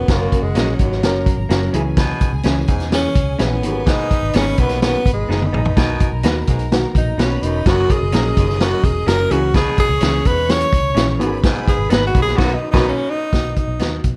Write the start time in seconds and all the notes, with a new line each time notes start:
Already playing: B3
0.08 F#1 F#2 F#3 C#4 F#4 A#4 F#5, kick, snare, closed hi-hat
0.12 A#3
0.32 kick, closed hi-hat
0.43 F#1 G#3
0.55 A#1 F#3 A#3 C#4 F#4 A#4, snare, closed hi-hat
0.74 F#3
0.79 G#1 D#2 A#4 A#5, kick, closed hi-hat
0.92 snare
1.02 F#1 F#2 F#3 C#4 A#4, snare, closed hi-hat
1.26 kick, closed hi-hat
1.38 G#1
1.49 F#1 F#3 A#3 C#4 F#4 A#4, snare, closed hi-hat
1.73 C#2 E3 C#4 E4 G#4 G#5, closed hi-hat
1.97 B2, kick, snare, closed hi-hat
2.21 kick, closed hi-hat
2.33 C#2
2.43 C#2 E3 C#4 E4 G#4, snare, closed hi-hat
2.68 E2 G#2, kick, closed hi-hat
2.80 snare, closed hi-hat
2.90 E3 C#4 G#4, snare, closed hi-hat
3.15 C#2, kick, closed hi-hat
3.39 A#1 E3 B3 C#4 E4 G#4, snare, closed hi-hat
3.62 G#1 F#2 D#3 B3 G4 B4 B5, closed hi-hat
3.70 G#4
3.86 G#2 D#4, kick, snare, closed hi-hat
4.11 kick, closed hi-hat
4.23 G#1
4.33 G#1 D#3 B3 C#4 D#4 G#4, snare, closed hi-hat
4.57 B1 D#2 B3, kick, closed hi-hat
4.69 snare, closed hi-hat
4.81 F#2 D#3 B3 G#4, snare, closed hi-hat
5.06 G#1, kick, closed hi-hat
5.13 G#3
5.29 F#1 D#3 B3 D#4 G#4, snare
5.42 high tom
5.47 D#4
5.52 A#1 B3 D#4 G#4, mid tom
5.65 floor tom
5.75 B1 B2 D#3 B3 F#4 A#4 A#5, kick, snare, closed hi-hat
6.00 kick, closed hi-hat
6.12 B1
6.23 D#2 D#3 B3 D#4 F#4 B4, snare, closed hi-hat
6.47 B1 G#2, kick, closed hi-hat
6.59 closed hi-hat
6.71 D#3 B3 F#4, snare, closed hi-hat
6.95 A#1 D#4, kick, closed hi-hat
7.18 B1 D#3 B3 D#4 F#4 B4 B5, snare, closed hi-hat
7.22 C#4
7.42 E1 F#2 D#4, closed hi-hat
7.65 F#1 F#2 F#3 C#4 F#4 A#4 D#5 D#6, kick, snare, closed hi-hat
7.90 G#4, kick, closed hi-hat
8.01 F#1
8.12 A#1 F#3 C#4 F#4 A#4, snare, closed hi-hat
8.36 F#1 D#2, kick, closed hi-hat
8.50 snare
8.60 F#2 F#3 C#4 F#4 A#4, snare, closed hi-hat
8.83 E1 G#4, kick, closed hi-hat
9.06 F#1 F#3 C#4 F#4 A#4, snare, closed hi-hat
9.30 C#2 E3 C#4 E4 F#4 G#4 C#5 C#6, closed hi-hat
9.54 B2 G#4, kick, snare, closed hi-hat
9.78 G#4, kick, closed hi-hat
9.89 C#2
10.00 C#2 E3 C#4 E4 G#4, snare, closed hi-hat
10.25 E2 G#2 B4, kick, closed hi-hat
10.49 E3 C#4 G#4 C#5, snare, closed hi-hat
10.60 closed hi-hat
10.73 C#2, kick, closed hi-hat
10.95 A#1 E3 C#4 E4 G#4, snare, closed hi-hat
11.19 G#1 F#2 D#3 B3 F#4 B4 B5, closed hi-hat
11.26 G#4
11.43 G#2, kick, snare, closed hi-hat
11.68 G#4, kick, closed hi-hat
11.79 G#1
11.90 G#1 D#3 B3 D#4 G#4 B4, snare, closed hi-hat
12.07 F#4
12.14 B1 D#2, kick, closed hi-hat
12.22 G#4
12.28 snare
12.37 B1 F#2 D#3 F#3 B3 D#4 F#4 B4 B5, kick, snare, crash
12.55 D#4
12.71 B1 F#2 D#3 F#3 B3 D#4 F#4 B4 B5, kick, snare, crash
12.89 C#4
13.11 D#4
13.33 B1 D#3 B3 F#4, kick, snare, closed hi-hat
13.56 D#4, kick, closed hi-hat
13.68 B1
13.79 D#2 D#3 B3 D#4 F#4, snare, closed hi-hat
14.04 B1, kick, closed hi-hat